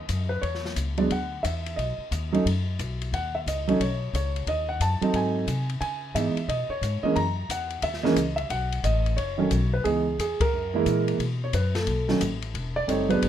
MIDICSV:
0, 0, Header, 1, 5, 480
1, 0, Start_track
1, 0, Tempo, 336511
1, 605, Time_signature, 4, 2, 24, 8
1, 18954, End_track
2, 0, Start_track
2, 0, Title_t, "Grand piano"
2, 0, Program_c, 0, 0
2, 0, Note_on_c, 0, 75, 88
2, 366, Note_off_c, 0, 75, 0
2, 417, Note_on_c, 0, 71, 69
2, 592, Note_on_c, 0, 73, 80
2, 603, Note_off_c, 0, 71, 0
2, 1045, Note_off_c, 0, 73, 0
2, 1391, Note_on_c, 0, 54, 60
2, 1396, Note_on_c, 0, 56, 51
2, 1400, Note_on_c, 0, 59, 53
2, 1402, Note_on_c, 0, 74, 64
2, 1418, Note_on_c, 0, 62, 60
2, 1547, Note_off_c, 0, 54, 0
2, 1550, Note_off_c, 0, 56, 0
2, 1552, Note_off_c, 0, 59, 0
2, 1558, Note_off_c, 0, 74, 0
2, 1561, Note_off_c, 0, 62, 0
2, 1597, Note_on_c, 0, 78, 74
2, 2040, Note_on_c, 0, 76, 72
2, 2075, Note_off_c, 0, 78, 0
2, 2515, Note_on_c, 0, 75, 75
2, 2537, Note_off_c, 0, 76, 0
2, 3315, Note_on_c, 0, 54, 67
2, 3319, Note_on_c, 0, 57, 55
2, 3329, Note_on_c, 0, 61, 60
2, 3338, Note_on_c, 0, 63, 74
2, 3469, Note_off_c, 0, 54, 0
2, 3471, Note_off_c, 0, 57, 0
2, 3476, Note_off_c, 0, 61, 0
2, 3481, Note_off_c, 0, 63, 0
2, 3902, Note_off_c, 0, 75, 0
2, 4477, Note_on_c, 0, 78, 85
2, 4775, Note_off_c, 0, 78, 0
2, 4775, Note_on_c, 0, 76, 76
2, 4847, Note_off_c, 0, 76, 0
2, 4962, Note_on_c, 0, 75, 73
2, 5242, Note_on_c, 0, 54, 65
2, 5252, Note_on_c, 0, 57, 61
2, 5262, Note_on_c, 0, 61, 65
2, 5266, Note_on_c, 0, 63, 71
2, 5392, Note_off_c, 0, 54, 0
2, 5397, Note_off_c, 0, 57, 0
2, 5402, Note_off_c, 0, 61, 0
2, 5404, Note_off_c, 0, 63, 0
2, 5436, Note_off_c, 0, 75, 0
2, 5444, Note_on_c, 0, 73, 73
2, 5897, Note_off_c, 0, 73, 0
2, 5918, Note_on_c, 0, 73, 71
2, 6394, Note_off_c, 0, 73, 0
2, 6395, Note_on_c, 0, 75, 90
2, 6665, Note_off_c, 0, 75, 0
2, 6686, Note_on_c, 0, 78, 79
2, 6856, Note_off_c, 0, 78, 0
2, 6869, Note_on_c, 0, 81, 77
2, 7152, Note_on_c, 0, 54, 66
2, 7154, Note_on_c, 0, 69, 59
2, 7164, Note_on_c, 0, 60, 54
2, 7175, Note_on_c, 0, 63, 65
2, 7302, Note_off_c, 0, 81, 0
2, 7356, Note_on_c, 0, 80, 79
2, 7768, Note_off_c, 0, 54, 0
2, 7769, Note_off_c, 0, 69, 0
2, 7774, Note_off_c, 0, 60, 0
2, 7779, Note_off_c, 0, 63, 0
2, 8070, Note_off_c, 0, 80, 0
2, 8283, Note_on_c, 0, 80, 90
2, 8763, Note_on_c, 0, 52, 52
2, 8766, Note_on_c, 0, 56, 43
2, 8774, Note_on_c, 0, 59, 51
2, 8774, Note_on_c, 0, 76, 79
2, 8775, Note_off_c, 0, 80, 0
2, 8784, Note_on_c, 0, 63, 58
2, 9037, Note_off_c, 0, 52, 0
2, 9038, Note_off_c, 0, 56, 0
2, 9042, Note_off_c, 0, 59, 0
2, 9047, Note_off_c, 0, 63, 0
2, 9213, Note_off_c, 0, 76, 0
2, 9252, Note_on_c, 0, 75, 83
2, 9557, Note_on_c, 0, 73, 77
2, 9560, Note_off_c, 0, 75, 0
2, 10030, Note_on_c, 0, 75, 84
2, 10035, Note_on_c, 0, 52, 59
2, 10040, Note_on_c, 0, 56, 57
2, 10045, Note_off_c, 0, 73, 0
2, 10057, Note_on_c, 0, 58, 55
2, 10061, Note_on_c, 0, 61, 66
2, 10186, Note_off_c, 0, 52, 0
2, 10188, Note_off_c, 0, 56, 0
2, 10197, Note_off_c, 0, 58, 0
2, 10199, Note_off_c, 0, 61, 0
2, 10206, Note_off_c, 0, 75, 0
2, 10208, Note_on_c, 0, 82, 98
2, 10650, Note_off_c, 0, 82, 0
2, 10712, Note_on_c, 0, 78, 77
2, 11142, Note_off_c, 0, 78, 0
2, 11175, Note_on_c, 0, 76, 89
2, 11456, Note_on_c, 0, 75, 76
2, 11457, Note_on_c, 0, 52, 77
2, 11457, Note_on_c, 0, 56, 64
2, 11470, Note_on_c, 0, 58, 72
2, 11481, Note_off_c, 0, 76, 0
2, 11484, Note_on_c, 0, 61, 83
2, 11616, Note_off_c, 0, 56, 0
2, 11617, Note_off_c, 0, 52, 0
2, 11623, Note_off_c, 0, 58, 0
2, 11630, Note_off_c, 0, 61, 0
2, 11926, Note_on_c, 0, 76, 80
2, 11954, Note_off_c, 0, 75, 0
2, 12114, Note_off_c, 0, 76, 0
2, 12130, Note_on_c, 0, 78, 86
2, 12570, Note_off_c, 0, 78, 0
2, 12612, Note_on_c, 0, 75, 83
2, 13074, Note_on_c, 0, 73, 81
2, 13099, Note_off_c, 0, 75, 0
2, 13375, Note_on_c, 0, 51, 63
2, 13386, Note_on_c, 0, 54, 64
2, 13394, Note_on_c, 0, 57, 55
2, 13401, Note_on_c, 0, 61, 67
2, 13536, Note_off_c, 0, 51, 0
2, 13541, Note_off_c, 0, 54, 0
2, 13545, Note_off_c, 0, 57, 0
2, 13549, Note_off_c, 0, 61, 0
2, 13807, Note_off_c, 0, 73, 0
2, 13886, Note_on_c, 0, 71, 71
2, 14031, Note_on_c, 0, 52, 47
2, 14037, Note_off_c, 0, 71, 0
2, 14037, Note_on_c, 0, 68, 82
2, 14047, Note_on_c, 0, 56, 43
2, 14051, Note_on_c, 0, 59, 43
2, 14063, Note_on_c, 0, 63, 49
2, 14310, Note_off_c, 0, 52, 0
2, 14318, Note_off_c, 0, 56, 0
2, 14320, Note_off_c, 0, 59, 0
2, 14326, Note_off_c, 0, 63, 0
2, 14484, Note_off_c, 0, 68, 0
2, 14552, Note_on_c, 0, 68, 73
2, 14847, Note_on_c, 0, 70, 82
2, 14850, Note_off_c, 0, 68, 0
2, 15315, Note_on_c, 0, 52, 69
2, 15330, Note_on_c, 0, 56, 64
2, 15333, Note_on_c, 0, 58, 65
2, 15344, Note_on_c, 0, 64, 72
2, 15739, Note_off_c, 0, 70, 0
2, 15929, Note_off_c, 0, 52, 0
2, 15937, Note_off_c, 0, 56, 0
2, 15938, Note_off_c, 0, 58, 0
2, 15943, Note_off_c, 0, 64, 0
2, 16316, Note_on_c, 0, 73, 65
2, 16460, Note_off_c, 0, 73, 0
2, 16463, Note_on_c, 0, 71, 68
2, 16749, Note_off_c, 0, 71, 0
2, 16763, Note_on_c, 0, 69, 69
2, 17244, Note_on_c, 0, 51, 57
2, 17253, Note_on_c, 0, 54, 52
2, 17257, Note_on_c, 0, 57, 49
2, 17265, Note_on_c, 0, 61, 69
2, 17363, Note_off_c, 0, 69, 0
2, 17391, Note_off_c, 0, 51, 0
2, 17396, Note_off_c, 0, 54, 0
2, 17398, Note_off_c, 0, 57, 0
2, 17402, Note_off_c, 0, 61, 0
2, 18204, Note_on_c, 0, 74, 85
2, 18356, Note_on_c, 0, 55, 56
2, 18364, Note_off_c, 0, 74, 0
2, 18366, Note_on_c, 0, 57, 56
2, 18373, Note_on_c, 0, 60, 52
2, 18384, Note_on_c, 0, 63, 64
2, 18401, Note_on_c, 0, 73, 69
2, 18634, Note_off_c, 0, 55, 0
2, 18639, Note_off_c, 0, 57, 0
2, 18643, Note_off_c, 0, 60, 0
2, 18648, Note_off_c, 0, 63, 0
2, 18668, Note_on_c, 0, 54, 58
2, 18679, Note_off_c, 0, 73, 0
2, 18683, Note_on_c, 0, 56, 55
2, 18686, Note_on_c, 0, 59, 55
2, 18691, Note_on_c, 0, 71, 81
2, 18692, Note_on_c, 0, 62, 64
2, 18954, Note_off_c, 0, 54, 0
2, 18954, Note_off_c, 0, 56, 0
2, 18954, Note_off_c, 0, 59, 0
2, 18954, Note_off_c, 0, 62, 0
2, 18954, Note_off_c, 0, 71, 0
2, 18954, End_track
3, 0, Start_track
3, 0, Title_t, "Upright bass"
3, 0, Program_c, 1, 32
3, 129, Note_on_c, 1, 42, 78
3, 592, Note_off_c, 1, 42, 0
3, 610, Note_on_c, 1, 40, 69
3, 1073, Note_off_c, 1, 40, 0
3, 1087, Note_on_c, 1, 37, 75
3, 1552, Note_off_c, 1, 37, 0
3, 1575, Note_on_c, 1, 38, 69
3, 2035, Note_off_c, 1, 38, 0
3, 2059, Note_on_c, 1, 40, 78
3, 2518, Note_off_c, 1, 40, 0
3, 2535, Note_on_c, 1, 35, 73
3, 2815, Note_off_c, 1, 35, 0
3, 3014, Note_on_c, 1, 39, 84
3, 3475, Note_off_c, 1, 39, 0
3, 3501, Note_on_c, 1, 42, 68
3, 3958, Note_off_c, 1, 42, 0
3, 3977, Note_on_c, 1, 35, 74
3, 4436, Note_off_c, 1, 35, 0
3, 4454, Note_on_c, 1, 39, 78
3, 4914, Note_off_c, 1, 39, 0
3, 4941, Note_on_c, 1, 37, 84
3, 5398, Note_off_c, 1, 37, 0
3, 5421, Note_on_c, 1, 35, 70
3, 5877, Note_off_c, 1, 35, 0
3, 5898, Note_on_c, 1, 37, 83
3, 6355, Note_off_c, 1, 37, 0
3, 6371, Note_on_c, 1, 39, 70
3, 6832, Note_off_c, 1, 39, 0
3, 6848, Note_on_c, 1, 42, 79
3, 7130, Note_off_c, 1, 42, 0
3, 7324, Note_on_c, 1, 44, 70
3, 7788, Note_off_c, 1, 44, 0
3, 7801, Note_on_c, 1, 48, 83
3, 8266, Note_off_c, 1, 48, 0
3, 8282, Note_on_c, 1, 49, 69
3, 8746, Note_off_c, 1, 49, 0
3, 8769, Note_on_c, 1, 44, 77
3, 9049, Note_off_c, 1, 44, 0
3, 9245, Note_on_c, 1, 47, 70
3, 9527, Note_off_c, 1, 47, 0
3, 9721, Note_on_c, 1, 44, 81
3, 10005, Note_off_c, 1, 44, 0
3, 10211, Note_on_c, 1, 42, 77
3, 10670, Note_off_c, 1, 42, 0
3, 10688, Note_on_c, 1, 40, 75
3, 11148, Note_off_c, 1, 40, 0
3, 11161, Note_on_c, 1, 39, 74
3, 11625, Note_off_c, 1, 39, 0
3, 11645, Note_on_c, 1, 37, 88
3, 12107, Note_off_c, 1, 37, 0
3, 12119, Note_on_c, 1, 35, 82
3, 12583, Note_off_c, 1, 35, 0
3, 12605, Note_on_c, 1, 33, 88
3, 13067, Note_off_c, 1, 33, 0
3, 13090, Note_on_c, 1, 30, 67
3, 13549, Note_off_c, 1, 30, 0
3, 13565, Note_on_c, 1, 35, 87
3, 14027, Note_off_c, 1, 35, 0
3, 14049, Note_on_c, 1, 37, 73
3, 14509, Note_off_c, 1, 37, 0
3, 14530, Note_on_c, 1, 40, 74
3, 14810, Note_off_c, 1, 40, 0
3, 15027, Note_on_c, 1, 42, 67
3, 15479, Note_off_c, 1, 42, 0
3, 15491, Note_on_c, 1, 46, 80
3, 15951, Note_off_c, 1, 46, 0
3, 15965, Note_on_c, 1, 47, 76
3, 16428, Note_off_c, 1, 47, 0
3, 16450, Note_on_c, 1, 42, 79
3, 16911, Note_off_c, 1, 42, 0
3, 16928, Note_on_c, 1, 35, 68
3, 17390, Note_off_c, 1, 35, 0
3, 17405, Note_on_c, 1, 33, 88
3, 17869, Note_off_c, 1, 33, 0
3, 17890, Note_on_c, 1, 28, 72
3, 18351, Note_off_c, 1, 28, 0
3, 18372, Note_on_c, 1, 30, 70
3, 18832, Note_off_c, 1, 30, 0
3, 18856, Note_on_c, 1, 32, 78
3, 18954, Note_off_c, 1, 32, 0
3, 18954, End_track
4, 0, Start_track
4, 0, Title_t, "Muted upright bass strokes"
4, 2825, Note_on_c, 9, 29, 32
4, 2968, Note_off_c, 9, 29, 0
4, 7152, Note_on_c, 9, 29, 35
4, 7294, Note_off_c, 9, 29, 0
4, 9066, Note_on_c, 9, 29, 34
4, 9209, Note_off_c, 9, 29, 0
4, 9545, Note_on_c, 9, 29, 36
4, 9688, Note_off_c, 9, 29, 0
4, 10027, Note_on_c, 9, 29, 39
4, 10170, Note_off_c, 9, 29, 0
4, 14838, Note_on_c, 9, 29, 37
4, 14981, Note_off_c, 9, 29, 0
4, 18954, End_track
5, 0, Start_track
5, 0, Title_t, "Drums"
5, 124, Note_on_c, 9, 44, 47
5, 124, Note_on_c, 9, 51, 57
5, 131, Note_on_c, 9, 36, 15
5, 267, Note_off_c, 9, 44, 0
5, 267, Note_off_c, 9, 51, 0
5, 274, Note_off_c, 9, 36, 0
5, 611, Note_on_c, 9, 36, 25
5, 613, Note_on_c, 9, 51, 46
5, 753, Note_off_c, 9, 36, 0
5, 755, Note_off_c, 9, 51, 0
5, 779, Note_on_c, 9, 38, 26
5, 921, Note_off_c, 9, 38, 0
5, 933, Note_on_c, 9, 38, 39
5, 1075, Note_off_c, 9, 38, 0
5, 1088, Note_on_c, 9, 44, 53
5, 1088, Note_on_c, 9, 51, 55
5, 1090, Note_on_c, 9, 36, 21
5, 1230, Note_off_c, 9, 44, 0
5, 1230, Note_off_c, 9, 51, 0
5, 1233, Note_off_c, 9, 36, 0
5, 1391, Note_on_c, 9, 51, 40
5, 1534, Note_off_c, 9, 51, 0
5, 1572, Note_on_c, 9, 36, 22
5, 1576, Note_on_c, 9, 51, 55
5, 1715, Note_off_c, 9, 36, 0
5, 1719, Note_off_c, 9, 51, 0
5, 2056, Note_on_c, 9, 36, 17
5, 2061, Note_on_c, 9, 44, 52
5, 2061, Note_on_c, 9, 51, 58
5, 2199, Note_off_c, 9, 36, 0
5, 2204, Note_off_c, 9, 44, 0
5, 2204, Note_off_c, 9, 51, 0
5, 2372, Note_on_c, 9, 51, 43
5, 2514, Note_off_c, 9, 51, 0
5, 2539, Note_on_c, 9, 36, 22
5, 2550, Note_on_c, 9, 51, 46
5, 2682, Note_off_c, 9, 36, 0
5, 2692, Note_off_c, 9, 51, 0
5, 3019, Note_on_c, 9, 36, 23
5, 3021, Note_on_c, 9, 44, 48
5, 3021, Note_on_c, 9, 51, 58
5, 3161, Note_off_c, 9, 36, 0
5, 3164, Note_off_c, 9, 44, 0
5, 3164, Note_off_c, 9, 51, 0
5, 3344, Note_on_c, 9, 51, 39
5, 3486, Note_off_c, 9, 51, 0
5, 3503, Note_on_c, 9, 36, 22
5, 3519, Note_on_c, 9, 51, 61
5, 3646, Note_off_c, 9, 36, 0
5, 3662, Note_off_c, 9, 51, 0
5, 3981, Note_on_c, 9, 36, 19
5, 3984, Note_on_c, 9, 44, 46
5, 3984, Note_on_c, 9, 51, 54
5, 4124, Note_off_c, 9, 36, 0
5, 4126, Note_off_c, 9, 44, 0
5, 4126, Note_off_c, 9, 51, 0
5, 4302, Note_on_c, 9, 51, 43
5, 4444, Note_off_c, 9, 51, 0
5, 4461, Note_on_c, 9, 36, 19
5, 4472, Note_on_c, 9, 51, 50
5, 4603, Note_off_c, 9, 36, 0
5, 4615, Note_off_c, 9, 51, 0
5, 4941, Note_on_c, 9, 36, 20
5, 4956, Note_on_c, 9, 44, 50
5, 4956, Note_on_c, 9, 51, 61
5, 5084, Note_off_c, 9, 36, 0
5, 5099, Note_off_c, 9, 44, 0
5, 5099, Note_off_c, 9, 51, 0
5, 5257, Note_on_c, 9, 51, 42
5, 5399, Note_off_c, 9, 51, 0
5, 5422, Note_on_c, 9, 36, 20
5, 5429, Note_on_c, 9, 51, 62
5, 5565, Note_off_c, 9, 36, 0
5, 5572, Note_off_c, 9, 51, 0
5, 5898, Note_on_c, 9, 36, 22
5, 5914, Note_on_c, 9, 44, 45
5, 5914, Note_on_c, 9, 51, 59
5, 6041, Note_off_c, 9, 36, 0
5, 6057, Note_off_c, 9, 44, 0
5, 6057, Note_off_c, 9, 51, 0
5, 6220, Note_on_c, 9, 51, 40
5, 6363, Note_off_c, 9, 51, 0
5, 6373, Note_on_c, 9, 36, 17
5, 6379, Note_on_c, 9, 51, 54
5, 6516, Note_off_c, 9, 36, 0
5, 6521, Note_off_c, 9, 51, 0
5, 6850, Note_on_c, 9, 36, 18
5, 6856, Note_on_c, 9, 44, 49
5, 6856, Note_on_c, 9, 51, 62
5, 6992, Note_off_c, 9, 36, 0
5, 6999, Note_off_c, 9, 44, 0
5, 6999, Note_off_c, 9, 51, 0
5, 7163, Note_on_c, 9, 51, 44
5, 7306, Note_off_c, 9, 51, 0
5, 7325, Note_on_c, 9, 36, 24
5, 7327, Note_on_c, 9, 51, 53
5, 7468, Note_off_c, 9, 36, 0
5, 7470, Note_off_c, 9, 51, 0
5, 7807, Note_on_c, 9, 36, 21
5, 7811, Note_on_c, 9, 44, 47
5, 7811, Note_on_c, 9, 51, 62
5, 7950, Note_off_c, 9, 36, 0
5, 7954, Note_off_c, 9, 44, 0
5, 7954, Note_off_c, 9, 51, 0
5, 8123, Note_on_c, 9, 51, 42
5, 8265, Note_off_c, 9, 51, 0
5, 8288, Note_on_c, 9, 36, 15
5, 8294, Note_on_c, 9, 51, 54
5, 8430, Note_off_c, 9, 36, 0
5, 8437, Note_off_c, 9, 51, 0
5, 8768, Note_on_c, 9, 36, 20
5, 8781, Note_on_c, 9, 44, 51
5, 8781, Note_on_c, 9, 51, 66
5, 8911, Note_off_c, 9, 36, 0
5, 8924, Note_off_c, 9, 44, 0
5, 8924, Note_off_c, 9, 51, 0
5, 9087, Note_on_c, 9, 51, 38
5, 9230, Note_off_c, 9, 51, 0
5, 9250, Note_on_c, 9, 36, 21
5, 9262, Note_on_c, 9, 51, 53
5, 9393, Note_off_c, 9, 36, 0
5, 9405, Note_off_c, 9, 51, 0
5, 9729, Note_on_c, 9, 36, 22
5, 9738, Note_on_c, 9, 44, 51
5, 9738, Note_on_c, 9, 51, 56
5, 9872, Note_off_c, 9, 36, 0
5, 9881, Note_off_c, 9, 44, 0
5, 9881, Note_off_c, 9, 51, 0
5, 10207, Note_on_c, 9, 36, 19
5, 10217, Note_on_c, 9, 51, 49
5, 10350, Note_off_c, 9, 36, 0
5, 10359, Note_off_c, 9, 51, 0
5, 10686, Note_on_c, 9, 36, 23
5, 10694, Note_on_c, 9, 44, 54
5, 10694, Note_on_c, 9, 51, 64
5, 10829, Note_off_c, 9, 36, 0
5, 10836, Note_off_c, 9, 44, 0
5, 10836, Note_off_c, 9, 51, 0
5, 10989, Note_on_c, 9, 51, 41
5, 11132, Note_off_c, 9, 51, 0
5, 11158, Note_on_c, 9, 51, 62
5, 11161, Note_on_c, 9, 36, 17
5, 11300, Note_off_c, 9, 51, 0
5, 11304, Note_off_c, 9, 36, 0
5, 11320, Note_on_c, 9, 38, 28
5, 11462, Note_off_c, 9, 38, 0
5, 11487, Note_on_c, 9, 38, 39
5, 11629, Note_off_c, 9, 38, 0
5, 11643, Note_on_c, 9, 36, 16
5, 11645, Note_on_c, 9, 44, 54
5, 11645, Note_on_c, 9, 51, 62
5, 11786, Note_off_c, 9, 36, 0
5, 11787, Note_off_c, 9, 44, 0
5, 11787, Note_off_c, 9, 51, 0
5, 11951, Note_on_c, 9, 51, 44
5, 12094, Note_off_c, 9, 51, 0
5, 12124, Note_on_c, 9, 36, 18
5, 12127, Note_on_c, 9, 51, 54
5, 12267, Note_off_c, 9, 36, 0
5, 12269, Note_off_c, 9, 51, 0
5, 12444, Note_on_c, 9, 51, 47
5, 12586, Note_off_c, 9, 51, 0
5, 12605, Note_on_c, 9, 36, 23
5, 12608, Note_on_c, 9, 44, 56
5, 12608, Note_on_c, 9, 51, 61
5, 12748, Note_off_c, 9, 36, 0
5, 12751, Note_off_c, 9, 44, 0
5, 12751, Note_off_c, 9, 51, 0
5, 12925, Note_on_c, 9, 51, 38
5, 13067, Note_off_c, 9, 51, 0
5, 13088, Note_on_c, 9, 36, 22
5, 13091, Note_on_c, 9, 51, 57
5, 13231, Note_off_c, 9, 36, 0
5, 13233, Note_off_c, 9, 51, 0
5, 13561, Note_on_c, 9, 44, 50
5, 13561, Note_on_c, 9, 51, 61
5, 13569, Note_on_c, 9, 36, 16
5, 13704, Note_off_c, 9, 44, 0
5, 13704, Note_off_c, 9, 51, 0
5, 13712, Note_off_c, 9, 36, 0
5, 14051, Note_on_c, 9, 36, 18
5, 14053, Note_on_c, 9, 51, 52
5, 14194, Note_off_c, 9, 36, 0
5, 14196, Note_off_c, 9, 51, 0
5, 14534, Note_on_c, 9, 36, 23
5, 14542, Note_on_c, 9, 44, 50
5, 14542, Note_on_c, 9, 51, 59
5, 14677, Note_off_c, 9, 36, 0
5, 14685, Note_off_c, 9, 44, 0
5, 14685, Note_off_c, 9, 51, 0
5, 14841, Note_on_c, 9, 36, 74
5, 14843, Note_on_c, 9, 51, 62
5, 14984, Note_off_c, 9, 36, 0
5, 14986, Note_off_c, 9, 51, 0
5, 15492, Note_on_c, 9, 44, 49
5, 15492, Note_on_c, 9, 51, 53
5, 15493, Note_on_c, 9, 36, 17
5, 15634, Note_off_c, 9, 44, 0
5, 15634, Note_off_c, 9, 51, 0
5, 15635, Note_off_c, 9, 36, 0
5, 15802, Note_on_c, 9, 51, 47
5, 15945, Note_off_c, 9, 51, 0
5, 15971, Note_on_c, 9, 36, 17
5, 15975, Note_on_c, 9, 51, 55
5, 16114, Note_off_c, 9, 36, 0
5, 16117, Note_off_c, 9, 51, 0
5, 16449, Note_on_c, 9, 36, 22
5, 16449, Note_on_c, 9, 44, 45
5, 16449, Note_on_c, 9, 51, 66
5, 16592, Note_off_c, 9, 36, 0
5, 16592, Note_off_c, 9, 44, 0
5, 16592, Note_off_c, 9, 51, 0
5, 16759, Note_on_c, 9, 38, 50
5, 16761, Note_on_c, 9, 51, 40
5, 16902, Note_off_c, 9, 38, 0
5, 16903, Note_off_c, 9, 51, 0
5, 16928, Note_on_c, 9, 36, 21
5, 16929, Note_on_c, 9, 51, 57
5, 17070, Note_off_c, 9, 36, 0
5, 17071, Note_off_c, 9, 51, 0
5, 17239, Note_on_c, 9, 38, 45
5, 17382, Note_off_c, 9, 38, 0
5, 17410, Note_on_c, 9, 36, 18
5, 17413, Note_on_c, 9, 44, 53
5, 17413, Note_on_c, 9, 51, 63
5, 17552, Note_off_c, 9, 36, 0
5, 17556, Note_off_c, 9, 44, 0
5, 17556, Note_off_c, 9, 51, 0
5, 17720, Note_on_c, 9, 51, 42
5, 17863, Note_off_c, 9, 51, 0
5, 17893, Note_on_c, 9, 36, 16
5, 17899, Note_on_c, 9, 51, 54
5, 18036, Note_off_c, 9, 36, 0
5, 18041, Note_off_c, 9, 51, 0
5, 18376, Note_on_c, 9, 36, 20
5, 18382, Note_on_c, 9, 44, 53
5, 18382, Note_on_c, 9, 51, 59
5, 18518, Note_off_c, 9, 36, 0
5, 18524, Note_off_c, 9, 44, 0
5, 18524, Note_off_c, 9, 51, 0
5, 18690, Note_on_c, 9, 51, 43
5, 18833, Note_off_c, 9, 51, 0
5, 18857, Note_on_c, 9, 36, 22
5, 18864, Note_on_c, 9, 51, 63
5, 18954, Note_off_c, 9, 36, 0
5, 18954, Note_off_c, 9, 51, 0
5, 18954, End_track
0, 0, End_of_file